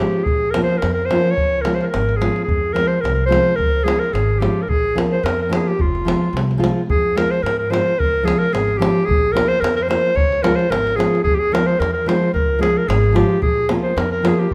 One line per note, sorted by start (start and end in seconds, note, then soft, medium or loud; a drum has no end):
0.00 0.21 F3 medium
0.00 0.21 G#3 medium
0.00 0.21 C#4 medium
0.00 0.22 F4 medium
0.00 0.25 G4 medium
0.24 0.60 A#1 medium
0.24 0.52 G#4 medium
0.24 davul low medium
0.51 0.63 A#4 medium
0.51 davul high medium
0.55 0.76 F3 medium
0.55 0.77 A#3 soft
0.55 0.77 C#4 medium
0.55 0.77 F4 medium
0.64 0.79 C5 medium
0.78 0.93 A#4 medium
0.82 1.16 F2 medium
0.82 davul high medium
0.94 1.07 A#4 medium
1.05 1.33 C5 medium
1.10 1.32 F3 medium
1.10 1.32 A#3 medium
1.10 1.33 C#4 medium
1.10 1.33 F4 medium
1.10 davul high medium
1.31 1.63 C#5 medium
1.38 1.71 C#2 medium
1.38 davul low medium
1.61 1.86 F3 medium
1.61 1.76 A#4 medium
1.61 davul high medium
1.65 1.87 G#3 soft
1.65 1.87 C#4 medium
1.65 1.87 F4 medium
1.74 1.81 C5 medium
1.81 1.89 A#4 medium
1.81 1.84 C5 medium
1.81 davul high soft
1.89 2.18 A#4 medium
1.94 2.27 G#1 medium
1.94 davul high medium
2.09 davul high soft
2.16 2.43 G#4 medium
2.21 2.42 F3 medium
2.21 2.42 G#3 soft
2.21 2.42 C#4 medium
2.21 2.43 F4 medium
2.21 davul high medium
2.36 davul high soft
2.44 2.75 G#4 medium
2.48 2.82 F2 medium
2.48 davul low medium
2.73 2.96 F3 medium
2.73 2.97 G#3 medium
2.73 2.97 C4 medium
2.73 2.97 F4 medium
2.73 2.89 A#4 medium
2.73 davul high medium
2.87 3.02 C5 medium
3.01 3.37 C2 medium
3.01 3.14 A#4 medium
3.05 davul high medium
3.14 3.21 A#4 medium
3.26 3.51 F3 medium
3.26 3.51 G#3 soft
3.26 3.57 C5 medium
3.30 3.52 C4 medium
3.30 3.52 F4 medium
3.30 davul high medium
3.56 3.91 C#2 medium
3.56 3.85 A#4 medium
3.60 davul low medium
3.84 4.06 F3 medium
3.84 4.06 G#3 soft
3.84 4.07 C#4 medium
3.84 4.07 F4 medium
3.84 4.01 G#4 medium
3.88 davul high medium
4.00 4.15 A#4 medium
4.13 4.46 G#1 medium
4.13 4.40 G#4 medium
4.13 davul high medium
4.39 4.62 F3 medium
4.39 4.62 G#3 soft
4.39 4.63 C#4 medium
4.39 4.63 F4 medium
4.39 4.64 G4 medium
4.39 davul high medium
4.62 4.70 A#4 medium
4.68 5.01 A#1 medium
4.68 4.96 G#4 medium
4.68 davul low medium
4.95 5.17 F3 medium
4.95 5.17 A#3 medium
4.95 5.17 C#4 medium
4.95 5.18 F4 medium
4.95 davul high medium
5.12 5.25 C5 medium
5.23 5.57 F2 medium
5.23 5.38 A#4 medium
5.23 davul high medium
5.42 5.52 A#4 medium
5.49 5.72 F3 medium
5.49 5.72 A#3 medium
5.49 5.72 C#4 medium
5.49 5.73 F4 medium
5.49 davul high medium
5.54 5.69 G#4 medium
5.68 5.83 G4 medium
5.79 6.12 F1 medium
5.79 6.62 F4 medium
5.79 davul low medium
5.95 davul high soft
6.05 6.27 F3 medium
6.05 6.27 G#3 soft
6.05 6.27 C4 medium
6.05 6.28 F4 medium
6.05 davul high medium
6.33 6.66 C2 medium
6.33 davul high medium
6.51 davul high soft
6.58 6.81 F3 medium
6.58 6.81 G#3 medium
6.58 6.82 C4 medium
6.58 6.82 F4 medium
6.64 davul high medium
6.89 7.22 F2 medium
6.89 7.18 G#4 medium
6.89 davul low medium
7.15 7.37 F3 medium
7.15 7.37 G#3 medium
7.15 7.37 C4 medium
7.15 7.38 F4 medium
7.15 7.32 A#4 medium
7.15 davul high medium
7.31 7.44 C5 medium
7.42 7.76 G#2 medium
7.42 7.57 A#4 medium
7.42 davul high medium
7.59 7.72 A#4 medium
7.70 7.92 F3 medium
7.70 7.92 G#3 medium
7.70 7.93 C4 medium
7.70 7.92 F4 medium
7.70 8.01 C5 medium
7.70 davul high medium
7.99 8.32 C#2 medium
7.99 8.27 A#4 medium
7.99 davul low medium
8.23 8.46 F3 medium
8.23 8.46 G#3 medium
8.23 8.46 C#4 medium
8.23 8.46 F4 medium
8.23 8.40 G#4 medium
8.28 davul high medium
8.38 8.55 A#4 medium
8.53 8.86 G#1 medium
8.53 8.79 G#4 medium
8.53 davul high medium
8.77 9.01 F3 medium
8.77 9.01 G#3 medium
8.77 9.02 C#4 medium
8.77 9.02 F4 medium
8.77 9.07 G4 medium
8.82 davul high medium
9.05 9.41 A#1 medium
9.05 9.34 G#4 medium
9.11 davul low medium
9.32 9.55 F3 medium
9.32 9.56 A#3 medium
9.32 9.56 C#4 medium
9.32 9.56 F4 medium
9.32 9.49 A#4 medium
9.37 davul high medium
9.48 9.62 C5 medium
9.60 9.95 F2 medium
9.60 9.76 A#4 medium
9.64 davul high medium
9.76 9.84 A#4 medium
9.82 9.84 C5 medium
9.88 10.10 F3 medium
9.88 10.10 A#3 medium
9.88 10.11 C#4 medium
9.88 10.11 F4 medium
9.88 10.17 C5 medium
9.88 davul high medium
10.15 10.48 C#2 medium
10.15 10.44 C#5 medium
10.15 davul low medium
10.32 davul high soft
10.42 10.65 F3 medium
10.42 10.65 G#3 medium
10.42 10.65 C#4 medium
10.42 10.65 F4 medium
10.42 10.57 A#4 medium
10.42 davul high medium
10.55 10.72 C5 medium
10.55 davul high soft
10.70 11.03 G#1 medium
10.70 10.98 A#4 medium
10.70 davul high medium
10.87 davul high soft
10.96 11.19 F3 medium
10.96 11.19 G#3 medium
10.96 11.20 C#4 medium
10.96 11.20 F4 medium
10.96 11.23 G#4 medium
11.00 davul high medium
11.15 davul high soft
11.24 11.57 F2 medium
11.24 11.36 G#4 medium
11.24 davul low medium
11.35 11.41 G4 medium
11.39 11.55 G#4 medium
11.52 11.74 F3 medium
11.52 11.74 G#3 medium
11.52 11.75 C4 medium
11.52 11.75 F4 medium
11.52 11.68 A#4 medium
11.52 davul high medium
11.66 11.81 C5 medium
11.79 12.13 E2 medium
11.79 11.93 A#4 medium
11.79 davul high medium
11.93 12.09 A#4 medium
12.06 12.28 F3 medium
12.06 12.29 G#3 medium
12.06 12.29 C4 medium
12.06 12.29 F4 medium
12.06 12.33 C5 medium
12.06 davul high medium
12.34 12.67 C#2 medium
12.34 12.60 A#4 medium
12.34 davul low medium
12.59 12.82 F3 medium
12.59 12.82 G#3 soft
12.59 12.82 C#4 medium
12.59 12.82 F4 medium
12.59 12.79 G#4 medium
12.63 davul high medium
12.77 12.90 A#4 medium
12.88 13.21 G#1 medium
12.88 13.18 G#4 medium
12.88 davul high medium
13.13 13.36 F3 medium
13.13 13.37 G#3 medium
13.13 13.37 C#4 medium
13.13 13.37 F4 medium
13.13 13.41 G4 medium
13.13 davul high medium
13.42 13.75 A#1 medium
13.42 13.68 G#4 medium
13.42 davul low medium
13.69 13.91 F3 medium
13.69 13.91 A#3 medium
13.69 13.92 C#4 medium
13.69 13.92 F4 medium
13.69 davul high medium
13.83 13.99 C5 medium
13.96 14.30 F2 medium
13.96 14.11 A#4 medium
13.96 davul high medium
14.11 14.28 A#4 medium
14.23 14.45 F3 medium
14.23 14.46 A#3 medium
14.23 14.46 C#4 medium
14.23 14.46 F4 medium
14.23 davul high medium
14.27 14.41 G#4 medium
14.39 14.54 G4 medium